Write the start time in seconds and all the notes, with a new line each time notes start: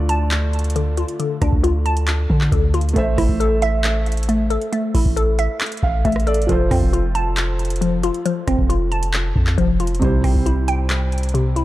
Already playing: D2 D3 A3 D4 F4 D5
0.09 A5, closed hi-hat
0.31 clap, closed hi-hat
0.53 closed hi-hat
0.59 closed hi-hat
0.64 closed hi-hat
0.70 closed hi-hat
0.76 D3, closed hi-hat
0.97 F4, closed hi-hat
1.08 closed hi-hat
1.20 D3, closed hi-hat
1.42 D2 D4, kick, cross-stick, closed hi-hat
1.53 D2, kick
1.64 F4, closed hi-hat
1.86 A5, closed hi-hat
1.97 closed hi-hat
2.07 clap, closed hi-hat
2.30 D3, kick
2.41 clap
2.52 D2 D3, kick, closed hi-hat
2.74 F4, closed hi-hat
2.81 closed hi-hat
2.89 closed hi-hat
2.93 A1 A3 A4 C5, kick, closed hi-hat
2.98 E5
3.18 G1 E4, kick, cross-stick, open hi-hat
3.29 A1, kick
3.40 A4, closed hi-hat
3.62 E5, closed hi-hat
3.84 clap, closed hi-hat
4.06 closed hi-hat
4.12 closed hi-hat
4.17 closed hi-hat
4.23 closed hi-hat
4.29 A3, closed hi-hat
4.50 A4, closed hi-hat
4.62 closed hi-hat
4.73 A3, closed hi-hat
4.95 A1 E4, kick, open hi-hat
5.06 A1, kick
5.16 A4, closed hi-hat
5.39 E5, closed hi-hat
5.61 clap, closed hi-hat
5.66 closed hi-hat
5.72 closed hi-hat
5.77 closed hi-hat
5.83 A1 F5, kick
6.05 A1 A3 E5, kick, closed hi-hat
6.12 cross-stick, closed hi-hat
6.20 closed hi-hat
6.27 A4 D5, closed hi-hat
6.34 closed hi-hat
6.42 closed hi-hat
6.47 F1 F3 F4 A4, kick, closed hi-hat
6.52 C5
6.71 F2 C4, kick, cross-stick, open hi-hat
6.82 F1, kick
6.93 F4, closed hi-hat
7.15 A5, closed hi-hat
7.37 clap, closed hi-hat
7.59 closed hi-hat
7.65 closed hi-hat
7.70 closed hi-hat
7.76 closed hi-hat
7.81 F3, closed hi-hat
8.03 F4, closed hi-hat
8.14 closed hi-hat
8.26 F3, closed hi-hat
8.47 F1 C4, kick, cross-stick, closed hi-hat
8.59 F1, kick
8.69 F4, closed hi-hat
8.92 A5, closed hi-hat
9.03 closed hi-hat
9.13 clap, closed hi-hat
9.36 F2, kick
9.47 clap
9.58 F1 F3, kick, closed hi-hat
9.80 F4, closed hi-hat
9.87 closed hi-hat
9.95 closed hi-hat
10.00 C2 C3 G3 E4, kick, closed hi-hat
10.04 C5
10.24 B1 C4, kick, cross-stick, open hi-hat
10.35 C2, kick
10.46 E4, closed hi-hat
10.68 G5, closed hi-hat
10.90 clap, closed hi-hat
11.12 closed hi-hat
11.18 closed hi-hat
11.23 closed hi-hat
11.29 closed hi-hat
11.34 C3, closed hi-hat
11.56 E4, closed hi-hat